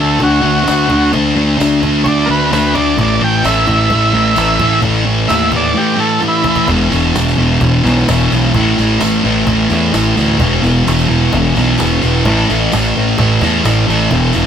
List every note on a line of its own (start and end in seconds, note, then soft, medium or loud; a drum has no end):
0.00 0.18 D2 medium
0.00 0.18 D3 medium
0.00 0.20 A3 medium
0.00 0.20 D4 medium
0.00 0.22 A4 medium
0.20 0.41 D2 medium
0.20 0.40 D3 medium
0.20 0.41 A3 medium
0.20 0.41 D4 medium
0.20 1.12 F#4 medium
0.20 cajon bass medium
0.41 0.65 D2 loud
0.41 0.63 D3 medium
0.41 0.64 A3 medium
0.41 0.64 D4 medium
0.64 0.87 D3 medium
0.64 0.89 A3 medium
0.64 0.88 D4 loud
0.64 cajon slap loud
0.64 tambourine loud
0.69 0.89 D2 medium
0.88 1.11 D2 medium
0.88 1.11 D3 medium
0.88 1.12 A3 medium
0.88 1.12 D4 loud
0.88 cajon bass medium
1.12 1.56 D2 loud
1.12 1.34 D3 loud
1.12 1.36 A3 loud
1.12 1.36 D4 loud
1.12 cajon bass loud
1.35 1.56 D3 medium
1.35 1.57 A3 medium
1.35 1.57 D4 loud
1.57 2.03 D2 loud
1.57 1.80 D3 medium
1.57 1.81 A3 medium
1.57 1.81 D4 loud
1.57 tambourine medium
1.61 cajon slap loud
1.81 2.02 D3 medium
1.81 2.04 A3 medium
1.81 2.04 D4 medium
1.81 cajon bass medium
2.03 2.27 D2 medium
2.03 2.26 D3 medium
2.03 2.26 A3 medium
2.03 2.26 D4 medium
2.03 2.06 C#5 medium
2.03 cajon bass medium
2.08 2.30 D5 medium
2.26 2.51 D2 medium
2.26 2.50 D3 medium
2.26 2.51 A3 medium
2.26 2.51 D4 medium
2.26 2.29 A#4 medium
2.31 2.51 B4 loud
2.51 2.74 D2 loud
2.51 2.74 D3 medium
2.51 2.75 A3 medium
2.51 2.74 D4 loud
2.51 2.75 B4 medium
2.51 cajon slap loud
2.51 tambourine loud
2.75 2.97 D2 medium
2.75 2.97 D3 medium
2.75 2.97 A3 medium
2.75 2.97 D4 medium
2.75 2.98 D5 loud
2.75 cajon bass medium
2.98 3.20 A1 loud
2.98 3.20 A2 loud
2.98 3.21 E3 loud
2.98 3.22 A3 loud
2.98 3.23 D5 medium
2.98 cajon bass loud
3.20 3.43 A1 loud
3.20 3.44 A2 medium
3.20 3.44 E3 loud
3.20 3.45 A3 loud
3.20 3.46 G5 loud
3.44 3.66 A1 medium
3.44 3.66 A2 medium
3.44 3.67 E3 loud
3.44 3.68 A3 medium
3.44 4.81 E5 loud
3.44 cajon slap loud
3.44 tambourine medium
3.67 3.89 A1 medium
3.67 3.89 A2 medium
3.67 3.91 E3 loud
3.67 3.91 A3 loud
3.67 cajon bass medium
3.90 4.12 A1 medium
3.90 4.12 A2 medium
3.90 4.13 E3 medium
3.90 4.13 A3 medium
3.90 cajon bass medium
4.13 4.35 A1 medium
4.13 4.34 A2 medium
4.13 4.35 E3 loud
4.13 4.35 A3 loud
4.27 cajon slap soft
4.35 4.59 A1 medium
4.35 4.59 A2 medium
4.35 4.60 E3 medium
4.35 4.60 A3 loud
4.35 cajon slap loud
4.35 tambourine loud
4.59 4.82 A1 medium
4.59 4.81 A2 medium
4.59 4.82 E3 medium
4.59 4.82 A3 medium
4.59 cajon bass medium
4.82 5.26 A1 medium
4.82 5.04 A2 loud
4.82 5.04 E3 medium
4.82 5.04 A3 loud
4.82 cajon bass loud
5.05 5.27 A2 loud
5.05 5.27 E3 loud
5.05 5.27 A3 loud
5.28 5.73 D#2 loud
5.28 5.51 A2 loud
5.28 5.51 E3 loud
5.28 5.52 A3 loud
5.28 5.52 E5 loud
5.28 cajon slap loud
5.28 tambourine medium
5.52 5.72 A2 medium
5.52 5.74 E3 medium
5.52 5.74 A3 medium
5.52 cajon bass medium
5.56 5.78 D5 medium
5.74 5.95 A2 medium
5.74 5.95 E3 medium
5.74 5.97 A3 medium
5.74 6.00 G4 medium
5.97 6.19 A2 medium
5.97 6.20 E3 loud
5.97 6.21 A3 medium
5.97 6.23 A4 medium
6.21 6.42 A2 medium
6.21 6.43 E3 medium
6.21 6.43 A3 medium
6.21 cajon slap medium
6.28 6.47 E4 medium
6.43 6.67 A2 medium
6.43 6.67 E3 medium
6.43 6.67 A3 loud
6.43 cajon bass loud
6.49 6.70 E4 loud
6.56 cajon bass medium
6.67 6.87 E1 loud
6.67 6.90 E2 loud
6.67 6.90 B2 loud
6.67 6.92 E3 loud
6.67 cajon bass loud
6.67 tambourine soft
6.81 tambourine soft
6.91 7.11 E1 loud
6.91 7.14 E2 medium
6.91 7.14 B2 loud
6.91 7.15 E3 loud
6.91 tambourine medium
7.15 7.34 E1 medium
7.15 7.36 E2 medium
7.15 7.37 B2 loud
7.15 7.38 E3 loud
7.15 cajon slap loud
7.15 tambourine medium
7.28 tambourine medium
7.37 7.57 E1 medium
7.37 7.60 E2 medium
7.37 7.60 B2 medium
7.37 7.61 E3 medium
7.61 7.80 E1 medium
7.61 7.82 E2 medium
7.61 7.83 B2 medium
7.61 7.84 E3 loud
7.61 cajon bass loud
7.61 tambourine soft
7.74 tambourine soft
7.83 8.03 B1 loud
7.83 8.08 E2 medium
7.83 8.09 B2 loud
7.83 8.09 E3 loud
7.83 tambourine medium
8.09 8.27 E1 medium
8.09 8.31 E2 medium
8.09 8.31 B2 medium
8.09 8.33 E3 medium
8.09 cajon slap loud
8.09 tambourine loud
8.32 8.50 B1 medium
8.32 8.54 E2 medium
8.32 8.54 B2 loud
8.32 8.56 E3 loud
8.32 tambourine medium
8.54 8.73 A1 loud
8.54 8.77 A2 medium
8.54 8.78 E3 loud
8.54 8.78 A3 loud
8.54 cajon bass loud
8.54 tambourine soft
8.67 tambourine soft
8.78 8.97 A1 loud
8.78 8.98 A2 loud
8.78 8.99 E3 loud
8.78 8.99 A3 loud
8.78 tambourine medium
8.99 9.20 A1 medium
8.99 9.22 A2 loud
8.99 9.23 E3 medium
8.99 9.24 A3 loud
8.99 cajon slap loud
8.99 tambourine medium
9.23 9.43 A1 medium
9.23 9.45 A2 medium
9.23 9.46 E3 medium
9.23 9.45 A3 loud
9.23 tambourine soft
9.46 9.66 A1 loud
9.46 9.68 A2 medium
9.46 9.69 E3 medium
9.46 9.69 A3 medium
9.46 cajon bass loud
9.46 tambourine soft
9.59 tambourine soft
9.69 9.89 E2 loud
9.69 9.91 A2 medium
9.69 9.92 E3 loud
9.69 9.92 A3 loud
9.69 tambourine medium
9.92 10.12 A1 medium
9.92 10.14 A2 medium
9.92 10.16 E3 medium
9.92 10.15 A3 medium
9.92 cajon slap loud
9.92 tambourine medium
10.16 10.41 D2 medium
10.16 10.38 A2 medium
10.16 10.39 E3 loud
10.16 10.38 A3 medium
10.16 tambourine medium
10.37 10.58 E1 loud
10.37 10.61 E2 medium
10.37 10.62 B2 loud
10.37 10.64 E3 loud
10.37 cajon bass loud
10.37 tambourine soft
10.52 tambourine soft
10.62 10.82 E1 loud
10.62 10.83 E2 medium
10.62 10.83 B2 medium
10.62 10.85 E3 loud
10.62 tambourine medium
10.84 11.05 E1 medium
10.84 11.07 E2 loud
10.84 11.08 B2 medium
10.84 11.09 E3 loud
10.84 cajon slap loud
10.84 tambourine medium
10.98 tambourine medium
11.08 11.28 E1 medium
11.08 11.32 E2 medium
11.08 11.33 B2 loud
11.08 11.34 E3 loud
11.33 11.51 E1 loud
11.33 11.54 E2 medium
11.33 11.55 B2 medium
11.33 11.56 E3 medium
11.33 cajon bass loud
11.33 tambourine soft
11.45 tambourine soft
11.55 11.75 B1 loud
11.55 11.77 E2 medium
11.55 11.76 B2 loud
11.55 11.79 E3 medium
11.55 tambourine medium
11.78 11.98 E1 loud
11.78 12.01 E2 medium
11.78 12.01 B2 medium
11.78 12.02 E3 medium
11.78 cajon slap loud
11.78 tambourine medium
12.02 12.21 E1 medium
12.02 12.24 E2 medium
12.02 12.24 B2 medium
12.02 12.26 E3 loud
12.02 tambourine medium
12.15 tambourine soft
12.25 12.44 A1 loud
12.25 12.48 A2 loud
12.25 12.50 E3 medium
12.25 12.50 A3 loud
12.25 cajon bass loud
12.25 tambourine soft
12.39 tambourine soft
12.49 12.68 A1 loud
12.49 12.71 A2 loud
12.49 12.73 E3 loud
12.49 12.72 A3 loud
12.49 tambourine medium
12.61 tambourine soft
12.72 12.91 A1 medium
12.72 12.95 A2 medium
12.72 12.97 E3 medium
12.72 12.97 A3 medium
12.72 cajon slap loud
12.72 tambourine medium
12.84 tambourine medium
12.95 13.14 A1 medium
12.95 13.17 A2 loud
12.95 13.19 E3 medium
12.95 13.18 A3 loud
12.95 tambourine soft
13.06 tambourine soft
13.18 13.37 A1 medium
13.18 13.41 A2 medium
13.18 13.42 E3 medium
13.18 13.42 A3 medium
13.18 cajon bass loud
13.18 tambourine soft
13.31 tambourine soft
13.41 13.60 E2 medium
13.41 13.63 A2 medium
13.41 13.64 E3 medium
13.41 13.64 A3 loud
13.41 cajon bass medium
13.41 tambourine medium
13.64 13.83 A1 medium
13.64 13.86 A2 medium
13.64 13.88 E3 medium
13.64 13.88 A3 medium
13.64 cajon slap loud
13.64 tambourine medium
13.78 tambourine soft
13.87 14.07 A1 medium
13.87 14.10 A2 medium
13.87 14.13 E3 medium
13.87 14.11 A3 medium
13.87 tambourine medium
14.01 tambourine soft
14.11 14.30 E1 loud
14.11 14.33 E2 loud
14.11 14.33 B2 loud
14.11 14.34 E3 loud
14.11 cajon bass loud
14.11 tambourine soft
14.22 tambourine soft
14.33 14.46 E1 loud
14.33 14.46 E2 loud
14.33 14.46 B2 loud
14.33 14.46 E3 medium
14.33 tambourine medium